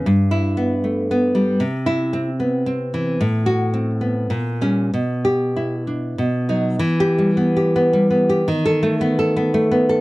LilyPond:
\new Staff \with { instrumentName = "Nylon-string guitar" } { \time 3/4 \key e \minor \tempo 4 = 110 << { r8 e'4 r4. | r8 e'4 r4. | r8 fis'4 r4 cis'8 | r8 g'4 r4 dis'8 |
\tuplet 3/2 { r8 g'4 } r2 | \tuplet 3/2 { r8 a'4 } r2 | } \\ { g,4 b8 a8 b8 g8 | c4 c'8 b8 c'8 e8 | a,4 c'8 b8 ais,8 g8 | b,4 e'8 d'8 b,8 fis8 |
\tuplet 3/2 { e4 g8 b8 g'8 b8 g8 b8 g'8 } | \tuplet 3/2 { dis4 a8 b8 a'8 b8 a8 b8 a'8 } | } >> }